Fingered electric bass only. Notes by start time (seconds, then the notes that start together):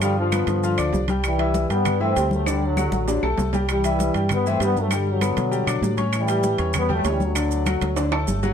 Already playing: G2
0.47 G2
0.79 D2
0.93 C2
1.70 G2
2.16 D2
2.92 A1
3.23 B1
3.38 C2
4.15 G2
4.60 G2
5.37 B2
5.67 B2
5.82 A2
6.59 E2
7.05 D2
7.81 D2
8.28 G1